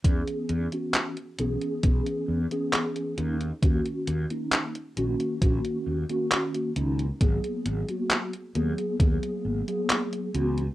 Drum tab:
HH |xxxxxxxxxx-xxxxx|xxxxxxxxxx-xxxxx|xxxxxxxxxx-xxxxx|
CP |----x-------x---|----x-------x---|----x-------x---|
BD |o-------o-------|o-------o-------|o-------o-------|